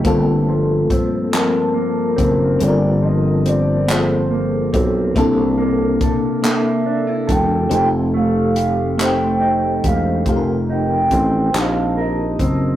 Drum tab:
HH |x-xx-x|x-xx-x|x-xx-x|x-xx-x|
CP |---x--|---x--|---x--|---x--|
BD |o-o--o|-----o|o-o--o|-----o|

HH |x-xx-x|
CP |---x--|
BD |o-o--o|